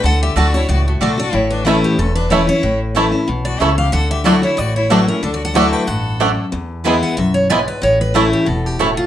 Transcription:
0.04 upright bass D2, steel-string acoustic guitar D3 F#5, fiddle A4
0.21 fiddle G4, steel-string acoustic guitar E5
0.36 upright bass D2, steel-string acoustic guitar D3 A3 D4 F#4 D5, mandolin A3 F#4 D5 A5, fiddle F#4
0.54 steel-string acoustic guitar D4 F#4 C#5, fiddle E4
0.69 upright bass C#2, steel-string acoustic guitar A2 D5, fiddle F#4
0.88 fiddle A3, steel-string acoustic guitar F#4
1.01 upright bass B1, steel-string acoustic guitar D3 A3 D4 F#4 A4, mandolin A3 F#4 D5 A5, fiddle D4
1.17 steel-string acoustic guitar D4 F#4 D5, fiddle F#4
1.33 upright bass A1, steel-string acoustic guitar A2 C#5, fiddle E4
1.50 fiddle D4, steel-string acoustic guitar B4
1.65 steel-string acoustic guitar E3 A3 C#4 E4 A4, mandolin A3 E4 C#5 A5, five-string banjo A3 C#4 E4, fiddle C#4
1.83 fiddle B3, steel-string acoustic guitar G4
1.98 upright bass E1, steel-string acoustic guitar E2 A4, fiddle C#4
2.15 fiddle D4, steel-string acoustic guitar B4
2.30 steel-string acoustic guitar E3 A3 C#4 E4 C#5, mandolin A3 E4 C#5 A5, five-string banjo A3 C#4 E4, fiddle E4
2.47 steel-string acoustic guitar C#4 E4 C#5, fiddle E4
2.63 upright bass A1, steel-string acoustic guitar A2
2.95 steel-string acoustic guitar E3 A3 C#4 E4, mandolin A3 E4 C#5 A5, five-string banjo A3 C#4 E4
3.12 steel-string acoustic guitar C#4 E4
3.28 upright bass B1, steel-string acoustic guitar B2
3.45 fiddle F#4, steel-string acoustic guitar D5
3.60 upright bass C#2, steel-string acoustic guitar C#3 E5, mandolin A3 E4 C#5 A5, five-string banjo A3 C#4 E4, fiddle A4
3.78 fiddle G4, steel-string acoustic guitar F5
3.92 upright bass D2, steel-string acoustic guitar D3 F#5, fiddle A4
4.11 fiddle G4, steel-string acoustic guitar E5
4.24 steel-string acoustic guitar F#3 A3 E4 F#4 D5, mandolin A3 E4 D5 F#5, five-string banjo A3 D4, fiddle F#4
4.42 fiddle E4, steel-string acoustic guitar E4 F#4 C#5
4.57 upright bass A1, steel-string acoustic guitar A2 D5, fiddle F#4
4.76 fiddle E4, steel-string acoustic guitar C#5
4.90 steel-string acoustic guitar F#3 A3 E4 F#4 B4, mandolin A3 E4 D5 F#5, five-string banjo A3 D4, fiddle D4
5.08 fiddle C#4, steel-string acoustic guitar E4 F#4 A#4
5.23 upright bass D2, steel-string acoustic guitar D3 A4, fiddle D4
5.34 fiddle F#4, steel-string acoustic guitar D5
5.45 fiddle A4, steel-string acoustic guitar F#5
5.54 steel-string acoustic guitar F#3 A3 E4 F#4 A5, mandolin A3 E4 D5 F#5, five-string banjo A3 D4, fiddle D5
5.72 fiddle B4, steel-string acoustic guitar G5
5.86 upright bass A1, steel-string acoustic guitar G2 F#5, fiddle A4
6.20 steel-string acoustic guitar F#2, mandolin A3 E4 D5 F#5, five-string banjo A3 D4
6.52 steel-string acoustic guitar E2, upright bass E2
6.84 steel-string acoustic guitar E3 G#3 B3 E4, five-string banjo G#3 B3 E4, mandolin B3 E4 B4 G#5
7.03 steel-string acoustic guitar F#5
7.17 upright bass B1, steel-string acoustic guitar F#2 E5
7.34 steel-string acoustic guitar C#5
7.50 steel-string acoustic guitar G#2 D5, five-string banjo G#3 B3 E4, mandolin B3 E4 B4 G#5
7.68 steel-string acoustic guitar B4
7.82 upright bass A1, steel-string acoustic guitar A2 C#5
8.01 steel-string acoustic guitar B4
8.14 steel-string acoustic guitar E3 A3 C#4 E4 A4, mandolin A3 E4 C#5 A5, five-string banjo A3 C#4 E4
8.33 steel-string acoustic guitar G4
8.46 upright bass E1, steel-string acoustic guitar B2 A4
8.66 steel-string acoustic guitar G4
8.79 steel-string acoustic guitar A2 F#4, mandolin A3 E4 C#5 A5, five-string banjo A3 C#4 E4
8.97 steel-string acoustic guitar F4

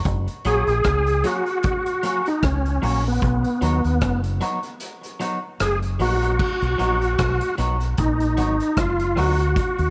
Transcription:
0.05 fingered electric bass F#1, kick, closed hi-hat
0.28 closed hi-hat
0.45 fingered electric bass A#1, clean electric guitar F#3 A#3 C#4 F#4, tonewheel organ G#4, closed hi-hat
0.67 fingered electric bass A#1, closed hi-hat
0.84 fingered electric bass C#2, kick, cross-stick, closed hi-hat
1.07 closed hi-hat
1.24 clean electric guitar F#3 A#3 C#4 F#4, tonewheel organ F#4, closed hi-hat
1.46 closed hi-hat
1.63 kick, closed hi-hat
1.86 closed hi-hat
2.03 clean electric guitar F#3 A#3 C#4 F#4, closed hi-hat
2.26 tonewheel organ D#4, closed hi-hat
2.43 fingered electric bass C#2, tonewheel organ C#4, kick, cross-stick, closed hi-hat
2.66 closed hi-hat
2.82 fingered electric bass A#1, clean electric guitar F#3 A#3 C#4 F#4, tonewheel organ C#4, open hi-hat
3.08 tonewheel organ B3
3.22 fingered electric bass B1, kick, closed hi-hat
3.44 closed hi-hat
3.61 fingered electric bass D#2, clean electric guitar F#3 B3 D#4 F#4, closed hi-hat
3.84 fingered electric bass D#2, closed hi-hat
4.01 fingered electric bass F#1, kick, cross-stick, closed hi-hat
4.24 closed hi-hat
4.41 clean electric guitar F#3 B3 D#4 F#4, closed hi-hat
4.63 closed hi-hat
4.80 closed hi-hat
5.03 closed hi-hat
5.20 clean electric guitar F#3 B3 D#4 F#4, closed hi-hat
5.60 fingered electric bass F#1, tonewheel organ G#4, cross-stick, closed hi-hat
5.82 closed hi-hat
6.00 fingered electric bass A#1, clean electric guitar F#3 B3 D#4 F#4, tonewheel organ F#4, open hi-hat
6.22 clean electric guitar F#3 B3 D#4 F#4, closed hi-hat
6.39 kick, crash
6.62 fingered electric bass B1, closed hi-hat
6.78 fingered electric bass A#1, clean electric guitar F#3 B3 D#4 F#4, closed hi-hat
7.01 closed hi-hat
7.18 fingered electric bass B1, kick, cross-stick, closed hi-hat
7.41 closed hi-hat
7.58 fingered electric bass B1, clean electric guitar F#3 B3 D#4 F#4, closed hi-hat
7.80 closed hi-hat
7.97 fingered electric bass A#1, tonewheel organ D#4, kick, closed hi-hat
8.20 closed hi-hat
8.37 fingered electric bass G#1, clean electric guitar F#3 B3 D#4 F#4, closed hi-hat
8.60 closed hi-hat
8.77 fingered electric bass F#1, tonewheel organ F4, kick, cross-stick, closed hi-hat
9.00 closed hi-hat
9.16 fingered electric bass D2, clean electric guitar F#3 B3 D#4 F#4, tonewheel organ F#4, cross-stick, open hi-hat
9.39 closed hi-hat
9.56 kick, closed hi-hat
9.78 fingered electric bass D#2, closed hi-hat

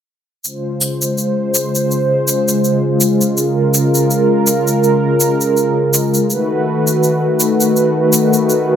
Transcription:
0.44 analog synth pad C#3 G#3 F4 C5, shaker
0.81 shaker
1.02 shaker
1.18 shaker
1.54 shaker
1.75 shaker
1.91 shaker
2.28 shaker
2.48 shaker
2.64 shaker
3.01 shaker
3.21 shaker
3.37 analog synth pad A#4, shaker
3.74 shaker
3.95 shaker
4.11 shaker
4.47 shaker
4.67 shaker
4.84 shaker
5.20 shaker
5.41 shaker
5.57 shaker
5.94 shaker
6.14 shaker
6.30 analog synth pad D#3 A3 F#4 B4, shaker
6.87 shaker
7.03 shaker
7.40 shaker
7.61 shaker
7.76 shaker
8.13 shaker
8.33 shaker
8.50 shaker

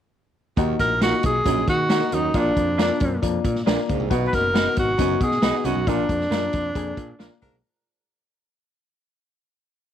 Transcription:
0.57 picked electric bass D#2, baritone saxophone D#2, upright piano A#3 D#4 F#4, kick, closed hi-hat
0.79 picked electric bass A#1, tenor saxophone A#4, kick, snare, closed hi-hat
1.01 clean electric guitar A#3 D#4 F#4 A#4, upright piano A#3 D#4 F4, tenor saxophone F#4, snare, closed hi-hat
1.23 picked electric bass B1, tenor saxophone G#4, kick, closed hi-hat
1.45 picked electric bass A#1, baritone saxophone F#2, upright piano A#3 D#4 G#4, kick, closed hi-hat
1.68 picked electric bass D#3, tenor saxophone F#4, kick, closed hi-hat
1.89 clean electric guitar A#3 D#4 F#4 A#4, upright piano A#3 D#4 F#4, snare, closed hi-hat
2.12 picked electric bass D#2, baritone saxophone F#2, tenor saxophone D#4, closed hi-hat
2.34 picked electric bass A#1, baritone saxophone A#2, upright piano A#3 D4 F4, tenor saxophone D4, kick, closed hi-hat
2.57 picked electric bass F2, kick, closed hi-hat
2.78 clean electric guitar A#3 D4 F4 A#4, upright piano A#3 D4 F4, tenor saxophone D4, snare, closed hi-hat
3.00 picked electric bass F#2, kick, closed hi-hat
3.22 picked electric bass F2, upright piano A#3 D4 F4, kick, closed hi-hat
3.45 picked electric bass A#2, kick, closed hi-hat
3.55 snare
3.66 picked electric bass A#1, clean electric guitar A#3 D4 F4 A#4, upright piano A#3 D4 F4, snare, closed hi-hat
3.89 picked electric bass C#2, baritone saxophone G#2, kick, closed hi-hat
4.00 picked electric bass C2
4.10 picked electric bass B1, baritone saxophone B2, upright piano B3 D#4 F#4, kick, closed hi-hat
4.27 tenor saxophone B4
4.33 picked electric bass F#1, tenor saxophone A#4, kick, snare, closed hi-hat
4.54 upright piano B3 D#4 F#4, clean electric guitar B3 D#4 F#4 B4, snare, closed hi-hat
4.76 picked electric bass G#1, tenor saxophone F#4, kick, closed hi-hat
4.98 picked electric bass F#1, baritone saxophone F#2, upright piano B3 D#4 F#4, kick, closed hi-hat
5.21 picked electric bass B2, tenor saxophone G#4, kick, closed hi-hat
5.31 snare
5.42 picked electric bass B1, upright piano B3 D#4 F#4, clean electric guitar B3 D#4 F#4 B4, snare, closed hi-hat
5.65 picked electric bass C2, baritone saxophone F#2, tenor saxophone F#4, closed hi-hat
5.75 picked electric bass B1
5.87 picked electric bass A#1, baritone saxophone A#2, upright piano A#3 D4 F4, tenor saxophone D4, kick, closed hi-hat
6.09 picked electric bass F2, kick, closed hi-hat
6.20 snare
6.30 picked electric bass F#2, clean electric guitar A#3 D4 F4 A#4, upright piano A#3 D4 D#4, snare, closed hi-hat
6.37 upright piano F4
6.53 picked electric bass F2, kick, closed hi-hat
6.75 picked electric bass F2, upright piano A#3 D4 G#4, kick, closed hi-hat
6.97 picked electric bass A#2, kick, closed hi-hat
7.19 picked electric bass A#1, clean electric guitar A#3 D4 F4 A#4, upright piano A#3 D4 F4, horn section D4 F4 A#4, snare, closed hi-hat
7.42 picked electric bass C2, baritone saxophone G#2, horn section D4 F4 A#4, kick, open hi-hat
7.53 picked electric bass B1

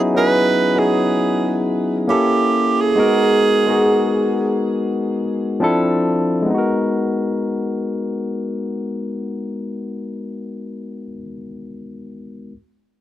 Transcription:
Already playing: tine electric piano F#3 B3 C#4 D#4 E4 G#4 E5
0.14 tine electric piano F#3 B3 C#4 D#4 E4 G#4, tenor saxophone B4
0.75 tine electric piano F#3 B3 C#4 D#4 E4 G#4
0.79 tenor saxophone G#4
2.08 tine electric piano A#3 C#4 E4 G4 A4, tenor saxophone G4
2.81 tenor saxophone G#4
2.96 tine electric piano G#3 B3 D#4 F#4 A#4
3.67 tine electric piano G#3 B3 D#4 F#4 G#4
5.60 tine electric piano F3 C4 D4 E4 A4
6.42 tine electric piano G#3 B3
6.50 tine electric piano D#4
6.54 tine electric piano F#4 A#4

